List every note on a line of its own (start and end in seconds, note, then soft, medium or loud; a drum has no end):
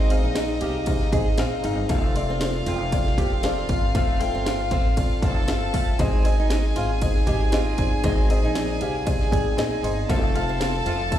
0.00 0.24 G#1 loud
0.00 0.58 G#2 medium
0.00 0.09 C4 loud
0.00 0.10 D#4 loud
0.00 1.86 D#4 medium
0.00 0.10 G#4 loud
0.00 0.10 C5 loud
0.00 1.91 D5 loud
0.00 0.37 D#5 loud
0.00 1.86 D#5 medium
0.00 0.11 F5 loud
0.09 0.33 C4 loud
0.09 0.34 D#4 medium
0.09 0.34 G#4 medium
0.09 0.34 C5 loud
0.09 0.34 F5 loud
0.09 ride medium
0.24 0.59 A#1 medium
0.24 0.49 D#4 medium
0.35 0.59 C4 medium
0.35 0.60 D#4 medium
0.35 0.60 G#4 medium
0.35 0.60 C5 medium
0.35 0.60 D#5 loud
0.35 snare loud
0.35 ride medium
0.61 1.09 C2 medium
0.61 0.85 C4 medium
0.61 0.85 D#4 medium
0.61 0.75 G4 medium
0.61 0.85 G#4 medium
0.61 0.86 C5 medium
0.61 0.86 F5 loud
0.61 ride medium
0.86 1.11 C4 medium
0.86 1.11 D#4 medium
0.86 1.11 G#4 medium
0.86 1.11 C5 medium
0.86 1.12 F5 medium
0.86 kick medium
0.86 ride medium
1.01 snare soft
1.12 1.38 G#1 loud
1.12 1.36 C4 medium
1.12 1.37 D#4 medium
1.12 1.26 G#4 medium
1.12 1.37 G#4 medium
1.12 1.37 C5 medium
1.12 1.37 D#5 medium
1.12 kick medium
1.12 ride medium
1.38 1.62 A#1 loud
1.38 1.61 C4 loud
1.38 1.62 D#4 loud
1.38 1.62 G#4 loud
1.38 1.62 C5 loud
1.38 1.62 F5 loud
1.38 snare loud
1.38 ride medium
1.63 1.88 G1 medium
1.63 1.87 C4 medium
1.63 1.87 D#4 medium
1.63 1.78 D#4 medium
1.63 1.88 G#4 medium
1.63 1.88 C5 medium
1.63 1.88 F5 medium
1.63 ride medium
1.89 2.63 F1 loud
1.89 2.14 A3 loud
1.89 2.13 C4 loud
1.89 2.13 F4 loud
1.89 5.19 F4 medium
1.89 2.14 A4 loud
1.89 2.14 C5 loud
1.89 5.19 F5 loud
1.89 2.14 F5 loud
1.89 kick loud
1.89 ride medium
2.15 2.39 C4 loud
2.15 2.39 F4 medium
2.15 2.39 A4 medium
2.15 2.39 C5 medium
2.15 2.40 D5 loud
2.15 ride medium
2.30 2.54 C4 medium
2.41 2.65 C4 medium
2.41 2.65 F4 medium
2.41 2.65 A4 medium
2.41 2.65 C5 medium
2.41 2.65 D5 loud
2.41 snare loud
2.41 ride medium
2.66 3.14 F1 loud
2.66 2.90 C4 medium
2.66 2.80 F4 medium
2.66 2.91 F4 medium
2.66 2.91 A4 medium
2.66 2.91 C5 medium
2.66 2.91 G5 loud
2.66 ride medium
2.92 3.16 C4 medium
2.92 3.16 F4 medium
2.92 3.16 A4 medium
2.92 3.16 C5 medium
2.92 3.17 D5 loud
2.92 kick medium
2.92 ride medium
3.07 snare soft
3.17 3.65 F1 loud
3.17 3.42 C4 medium
3.17 3.42 F4 medium
3.17 3.31 G4 medium
3.17 3.42 A4 medium
3.17 3.43 C5 medium
3.17 3.43 G5 medium
3.17 kick medium
3.17 ride medium
3.43 3.67 C4 loud
3.43 3.81 F4 medium
3.43 3.67 F4 loud
3.43 3.68 A4 loud
3.43 3.68 C5 loud
3.43 3.68 D5 loud
3.43 snare loud
3.43 ride medium
3.69 3.93 G1 medium
3.69 3.93 C4 medium
3.69 3.93 F4 medium
3.69 3.93 A4 medium
3.69 3.94 C5 medium
3.69 3.94 F5 loud
3.69 kick medium
3.69 ride medium
3.95 4.32 F1 loud
3.95 4.19 A3 loud
3.95 4.17 C4 loud
3.95 4.18 F4 loud
3.95 4.18 A4 loud
3.95 4.19 C5 medium
3.95 4.19 F5 loud
3.95 kick loud
3.95 ride medium
4.19 4.43 C4 loud
4.19 4.44 F4 medium
4.19 4.44 A4 medium
4.19 4.44 C5 medium
4.19 4.44 G5 loud
4.19 ride medium
4.35 4.71 G1 medium
4.35 4.59 C4 medium
4.45 4.69 C4 medium
4.45 4.69 F4 medium
4.45 4.70 A4 medium
4.45 4.70 C5 medium
4.45 4.70 F5 medium
4.45 snare loud
4.45 ride medium
4.71 5.19 A1 loud
4.71 4.95 C4 medium
4.71 4.85 C4 medium
4.71 4.95 F4 medium
4.71 4.95 A4 medium
4.71 4.95 C5 medium
4.71 4.96 F5 medium
4.71 kick medium
4.71 ride medium
4.97 5.21 C4 medium
4.97 5.21 F4 medium
4.97 5.21 A4 medium
4.97 5.21 C5 medium
4.97 5.21 D5 medium
4.97 kick medium
4.97 ride medium
5.22 5.46 F1 loud
5.22 5.46 C4 medium
5.22 5.37 C4 medium
5.22 5.46 F4 medium
5.22 5.98 A4 medium
5.22 5.47 A4 medium
5.22 5.47 C5 medium
5.22 5.47 F5 medium
5.22 5.98 A5 medium
5.22 kick medium
5.22 ride medium
5.47 5.74 G1 medium
5.47 5.71 C4 loud
5.47 5.72 F4 medium
5.47 5.72 A4 medium
5.47 5.72 C5 medium
5.47 5.72 F5 loud
5.47 snare loud
5.47 ride medium
5.73 5.98 F1 medium
5.73 5.88 A3 medium
5.73 5.97 C4 medium
5.73 5.97 F4 medium
5.73 5.98 A4 medium
5.73 5.98 C5 medium
5.73 5.98 F5 loud
5.73 kick medium
5.73 open hi-hat medium
5.73 ride medium
5.99 6.72 G#1 loud
5.99 6.73 G#2 medium
5.99 6.22 C4 loud
5.99 6.24 C4 medium
5.99 6.23 D#4 medium
5.99 10.05 G#4 medium
5.99 6.23 G#4 loud
5.99 6.23 C5 loud
5.99 6.24 D#5 loud
5.99 10.05 G#5 medium
5.99 kick loud
5.99 ride medium
6.24 6.48 C4 loud
6.24 6.48 D#4 medium
6.24 6.49 G#4 medium
6.24 6.49 C5 medium
6.24 6.49 D#5 loud
6.24 ride medium
6.40 6.64 D#4 medium
6.50 6.74 C4 medium
6.50 6.74 D#4 medium
6.50 6.75 G#4 medium
6.50 6.75 C5 medium
6.50 6.75 D#5 loud
6.50 snare loud
6.50 ride medium
6.76 7.24 G#1 loud
6.76 7.00 C4 medium
6.76 7.00 D#4 medium
6.76 6.90 F4 medium
6.76 7.00 G#4 medium
6.76 7.00 C5 medium
6.76 7.00 F5 medium
6.76 ride medium
7.01 7.25 C4 medium
7.01 7.26 D#4 medium
7.01 7.26 G#4 medium
7.01 7.26 C5 medium
7.01 7.26 D#5 medium
7.01 kick medium
7.01 ride medium
7.16 snare soft
7.27 7.75 G#1 loud
7.27 7.50 C4 medium
7.27 7.50 D#4 medium
7.27 7.41 G4 medium
7.27 7.51 G#4 medium
7.27 7.51 C5 medium
7.27 7.52 D#5 medium
7.27 kick medium
7.27 ride medium
7.51 7.76 C4 loud
7.51 7.76 D#4 loud
7.51 7.90 F4 medium
7.51 7.77 G#4 loud
7.51 7.77 C5 loud
7.51 7.77 D#5 loud
7.51 snare loud
7.51 ride medium
7.78 8.03 G1 medium
7.78 8.02 C4 medium
7.78 8.02 D#4 medium
7.78 8.03 G#4 medium
7.78 8.03 C5 medium
7.78 8.03 D5 medium
7.78 kick loud
7.78 ride medium
8.04 8.44 G#1 loud
8.04 8.77 G#2 medium
8.04 8.28 C4 loud
8.04 8.28 D#4 medium
8.04 8.28 G#4 loud
8.04 8.28 C5 medium
8.04 8.28 D#5 loud
8.04 kick loud
8.04 ride medium
8.29 8.53 C4 loud
8.29 8.54 D#4 loud
8.29 8.54 G#4 loud
8.29 8.54 C5 loud
8.29 8.54 D#5 loud
8.29 ride medium
8.44 8.78 A#1 medium
8.44 8.69 D#4 medium
8.55 8.78 C4 medium
8.55 8.79 D#4 medium
8.55 8.79 G#4 medium
8.55 8.80 C5 medium
8.55 8.79 D5 loud
8.55 snare loud
8.55 ride medium
8.80 9.29 C2 loud
8.80 9.04 C4 medium
8.80 9.04 D#4 medium
8.80 8.95 G4 medium
8.80 9.05 G#4 medium
8.80 9.05 C5 medium
8.80 9.05 D5 medium
8.80 9.05 F5 medium
8.80 ride medium
9.05 9.29 C4 medium
9.05 9.30 D#4 medium
9.05 9.30 G#4 medium
9.05 9.31 C5 medium
9.05 9.30 D5 loud
9.05 9.30 D#5 medium
9.05 kick medium
9.05 ride medium
9.21 snare soft
9.31 9.57 G#1 loud
9.31 9.55 C4 medium
9.31 9.56 D#4 medium
9.31 9.56 G#4 medium
9.31 9.46 G#4 medium
9.31 9.56 C5 medium
9.31 9.56 D5 loud
9.31 9.56 G5 medium
9.31 kick medium
9.31 ride medium
9.57 9.81 A#1 loud
9.57 9.81 C4 loud
9.57 9.81 D#4 loud
9.57 9.82 G#4 loud
9.57 9.82 C5 loud
9.57 9.82 D#5 loud
9.57 9.82 G#5 medium
9.57 snare loud
9.57 ride medium
9.83 10.07 G1 medium
9.83 10.07 C4 medium
9.83 10.07 D#4 medium
9.83 9.97 D#4 medium
9.83 10.07 G#4 medium
9.83 10.08 C5 medium
9.83 10.08 D#5 loud
9.83 10.07 C6 medium
9.83 ride medium
10.09 10.82 F1 loud
10.09 10.34 A3 loud
10.09 10.33 C4 loud
10.09 10.33 F4 medium
10.09 10.33 A4 loud
10.09 11.19 A4 medium
10.09 10.34 C5 loud
10.09 10.34 F5 loud
10.09 11.19 A5 loud
10.09 kick loud
10.09 ride medium
10.34 10.58 C4 loud
10.34 10.58 F4 loud
10.34 10.59 A4 medium
10.34 10.59 C5 loud
10.34 10.59 F5 loud
10.34 ride medium
10.49 10.74 C4 medium
10.60 10.84 C4 loud
10.60 10.84 F4 medium
10.60 10.84 A4 medium
10.60 10.84 C5 medium
10.60 10.85 F5 medium
10.60 snare loud
10.60 ride medium
10.85 11.19 F1 loud
10.85 11.09 C4 medium
10.85 11.10 F4 medium
10.85 11.00 F4 medium
10.85 11.10 A4 medium
10.85 11.10 C5 medium
10.85 11.10 F5 loud
10.85 ride medium
11.11 11.19 C4 medium
11.11 11.19 F4 medium
11.11 11.19 A4 medium
11.11 11.19 C5 medium
11.11 11.19 E5 medium
11.11 kick medium
11.11 ride medium